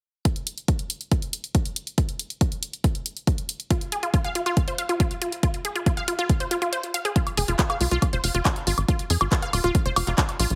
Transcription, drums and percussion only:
0.25 kick, closed hi-hat
0.36 closed hi-hat
0.47 closed hi-hat
0.58 closed hi-hat
0.68 kick, closed hi-hat
0.79 closed hi-hat
0.90 closed hi-hat
1.01 closed hi-hat
1.12 kick, closed hi-hat
1.22 closed hi-hat
1.33 closed hi-hat
1.44 closed hi-hat
1.55 kick, closed hi-hat
1.65 closed hi-hat
1.76 closed hi-hat
1.87 closed hi-hat
1.98 kick, closed hi-hat
2.09 closed hi-hat
2.19 closed hi-hat
2.30 closed hi-hat
2.41 kick, closed hi-hat
2.52 closed hi-hat
2.63 closed hi-hat
2.73 closed hi-hat
2.84 kick, closed hi-hat
2.95 closed hi-hat
3.06 closed hi-hat
3.17 closed hi-hat
3.27 kick, closed hi-hat
3.38 closed hi-hat
3.49 closed hi-hat
3.60 closed hi-hat
3.71 kick, closed hi-hat
3.81 closed hi-hat
3.92 closed hi-hat
4.03 closed hi-hat
4.14 kick, closed hi-hat
4.24 closed hi-hat
4.35 closed hi-hat
4.46 closed hi-hat
4.57 kick, closed hi-hat
4.68 closed hi-hat
4.78 closed hi-hat
4.89 closed hi-hat
5.00 kick, closed hi-hat
5.11 closed hi-hat
5.22 closed hi-hat
5.32 closed hi-hat
5.43 kick, closed hi-hat
5.54 closed hi-hat
5.65 closed hi-hat
5.76 closed hi-hat
5.86 kick, closed hi-hat
5.97 closed hi-hat
6.08 closed hi-hat
6.19 closed hi-hat
6.29 kick, closed hi-hat
6.40 closed hi-hat
6.51 closed hi-hat
6.62 closed hi-hat
6.73 closed hi-hat
6.83 closed hi-hat
6.94 closed hi-hat
7.05 closed hi-hat
7.16 kick, closed hi-hat
7.27 closed hi-hat, high woodblock
7.37 open hi-hat
7.48 closed hi-hat
7.59 kick, clap, closed hi-hat
7.70 closed hi-hat, high woodblock
7.81 open hi-hat
7.91 closed hi-hat
8.02 kick, closed hi-hat, high woodblock
8.13 closed hi-hat
8.24 open hi-hat
8.35 closed hi-hat
8.45 kick, clap, closed hi-hat, high woodblock
8.56 closed hi-hat
8.67 open hi-hat
8.78 closed hi-hat, high woodblock
8.88 kick, closed hi-hat
8.99 closed hi-hat
9.10 open hi-hat
9.21 closed hi-hat, high woodblock
9.32 kick, clap, closed hi-hat
9.42 closed hi-hat
9.53 open hi-hat, high woodblock
9.64 closed hi-hat
9.75 kick, closed hi-hat
9.86 closed hi-hat
9.96 open hi-hat, high woodblock
10.07 clap, closed hi-hat
10.18 kick, clap, closed hi-hat
10.29 closed hi-hat, high woodblock
10.40 open hi-hat
10.50 closed hi-hat

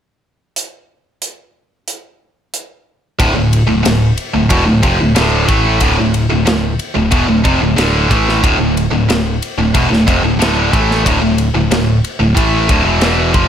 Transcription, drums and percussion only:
0.56 closed hi-hat
1.22 closed hi-hat
1.88 closed hi-hat
2.54 closed hi-hat
3.20 kick, ride
3.53 ride
3.85 snare, ride
4.18 ride
4.50 kick, ride
4.83 kick, ride
5.16 snare, ride
5.49 kick, ride
5.80 kick, ride
6.14 ride
6.47 snare, ride
6.79 ride
7.12 kick, ride
7.45 kick, ride
7.78 snare, ride
8.11 kick, ride
8.29 snare
8.44 kick, ride
8.77 ride
9.10 snare, ride
9.42 ride
9.75 kick, ride
9.93 snare
10.08 kick, ride
10.42 snare, ride
10.73 kick, ride
10.91 snare
11.06 kick, ride
11.38 ride
11.71 snare, ride
12.04 ride
12.37 kick, ride
12.69 kick, ride
13.01 snare, ride
13.34 kick, ride

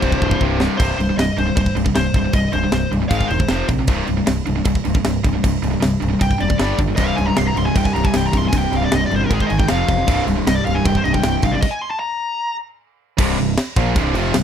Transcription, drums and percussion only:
0.02 kick, crash
0.12 kick
0.22 kick
0.31 kick
0.41 kick
0.60 snare
0.80 kick, crash
1.00 crash
1.19 snare, crash
1.38 crash
1.57 kick, crash
1.66 kick
1.76 crash
1.86 kick
1.95 snare, crash
2.14 kick, crash
2.33 kick, crash
2.53 crash
2.72 snare, crash
2.92 crash
3.11 kick, crash
3.21 kick
3.30 crash
3.40 kick
3.48 snare, crash
3.68 kick, crash
3.87 kick, crash
4.07 crash
4.27 snare, crash
4.47 crash
4.65 kick, crash
4.75 kick
4.85 crash
4.95 kick
5.05 snare, crash
5.24 kick, crash
5.44 kick, crash
5.63 crash
5.82 snare, crash
6.02 crash
6.21 kick, crash
6.31 kick
6.40 crash
6.50 kick
6.59 snare, crash
6.78 kick, crash
6.97 kick, crash
7.18 crash
7.37 snare, crash
7.57 crash
7.76 kick, crash
7.85 kick
7.96 crash
8.05 kick
8.14 snare, crash
8.33 kick, crash
8.53 kick, crash
8.73 crash
8.92 snare, crash
9.11 crash
9.31 kick, crash
9.40 kick
9.50 crash
9.59 kick
9.68 snare, crash
9.88 kick, crash
10.08 kick, crash
10.28 crash
10.47 snare, crash
10.67 crash
10.85 kick, crash
10.95 kick
11.05 crash
11.14 kick
11.23 snare, crash
11.42 kick, crash
11.62 kick, crash
13.18 kick, crash
13.38 crash
13.57 snare, crash
13.76 kick, crash
13.96 kick, crash
14.15 crash
14.34 snare, crash

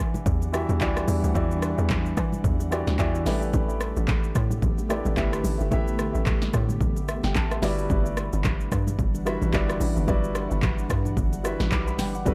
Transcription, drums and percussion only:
0.14 low bongo, shaker
0.26 kick, low conga, shaker
0.42 high bongo, shaker
0.54 cross-stick, shaker
0.69 low bongo, shaker
0.81 kick, clap, high bongo, shaker
0.97 cross-stick, shaker
1.08 open hi-hat, high bongo, low bongo, shaker
1.24 shaker
1.35 kick, low conga, shaker
1.51 shaker
1.62 cross-stick, shaker
1.78 shaker
1.90 kick, clap, high bongo, low conga, shaker
2.06 shaker
2.17 kick, cross-stick, low bongo, shaker
2.32 low bongo, shaker
2.44 kick, low conga, shaker
2.60 high bongo, shaker
2.72 cross-stick, shaker
2.87 snare, low bongo, shaker
2.99 kick, clap, high bongo, shaker
3.15 shaker
3.26 snare, open hi-hat, high bongo, low bongo, shaker
3.42 shaker
3.53 kick, low conga, shaker
3.69 shaker
3.81 cross-stick, shaker
3.97 shaker
4.08 kick, clap, high bongo, low conga, shaker
4.24 shaker
4.35 kick, cross-stick, low bongo, shaker
4.51 low bongo, shaker
4.62 kick, low conga, shaker
4.78 high bongo, shaker
4.90 cross-stick, shaker
5.05 low bongo, shaker
5.17 kick, clap, high bongo, shaker
5.33 cross-stick, shaker
5.44 open hi-hat, high bongo, low bongo, shaker
5.60 shaker
5.71 kick, low conga, shaker
5.88 shaker
5.99 cross-stick, shaker
6.15 shaker
6.26 kick, clap, high bongo, low conga, shaker
6.42 snare, shaker
6.53 kick, cross-stick, low bongo, shaker
6.69 low bongo, shaker
6.81 kick, low conga, shaker
6.96 high bongo, shaker
7.08 cross-stick, shaker
7.23 snare, low bongo, shaker
7.35 kick, clap, high bongo, shaker
7.51 cross-stick, shaker
7.62 snare, open hi-hat, high bongo, low bongo, shaker
7.79 shaker
7.89 kick, low conga, shaker
8.06 shaker
8.17 cross-stick, shaker
8.33 shaker
8.44 kick, clap, high bongo, low conga, shaker
8.60 shaker
8.72 kick, cross-stick, low bongo, shaker
8.87 low bongo, shaker
8.99 kick, low conga, shaker
9.15 high bongo, shaker
9.26 cross-stick, shaker
9.42 low bongo, shaker
9.53 kick, clap, high bongo, shaker
9.70 cross-stick, shaker
9.80 open hi-hat, high bongo, low bongo, shaker
9.97 shaker
10.08 kick, low conga, shaker
10.24 shaker
10.35 cross-stick, shaker
10.51 shaker
10.62 kick, clap, high bongo, low conga, shaker
10.78 shaker
10.90 kick, cross-stick, low bongo, shaker
11.05 low bongo, shaker
11.17 kick, low conga, shaker
11.33 high bongo, shaker
11.45 cross-stick, shaker
11.60 snare, low bongo, shaker
11.72 kick, clap, high bongo, shaker
11.88 shaker
11.98 snare, open hi-hat, high bongo, low bongo, shaker
12.15 shaker
12.26 kick, low conga, shaker

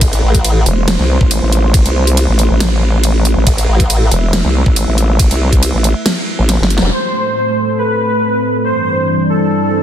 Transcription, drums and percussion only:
0.01 kick, closed hi-hat, ride
0.13 closed hi-hat
0.35 kick, closed hi-hat
0.45 closed hi-hat, ride
0.66 closed hi-hat
0.88 snare, closed hi-hat, ride
0.99 snare
1.21 kick
1.31 closed hi-hat, ride
1.52 closed hi-hat
1.74 kick, closed hi-hat, ride
1.86 closed hi-hat
2.07 closed hi-hat
2.17 closed hi-hat, ride
2.39 closed hi-hat
2.60 snare, closed hi-hat, ride
3.04 closed hi-hat, ride
3.25 closed hi-hat
3.47 kick, closed hi-hat, ride
3.58 closed hi-hat
3.80 kick, closed hi-hat
3.90 closed hi-hat, ride
4.12 closed hi-hat
4.33 snare, closed hi-hat, ride
4.45 snare
4.66 kick
4.76 closed hi-hat, ride
4.98 closed hi-hat
5.19 kick, closed hi-hat, ride
5.31 closed hi-hat
5.53 kick, closed hi-hat
5.63 closed hi-hat, ride
5.84 closed hi-hat
6.06 snare, closed hi-hat, ride
6.49 snare, closed hi-hat, ride
6.63 snare
6.70 closed hi-hat
6.78 snare
7.04 closed hi-hat
7.25 closed hi-hat
7.35 closed hi-hat
7.57 closed hi-hat
7.78 closed hi-hat
8.21 closed hi-hat
8.43 closed hi-hat
8.65 closed hi-hat
8.76 closed hi-hat
8.98 closed hi-hat
9.08 closed hi-hat
9.29 closed hi-hat
9.51 closed hi-hat

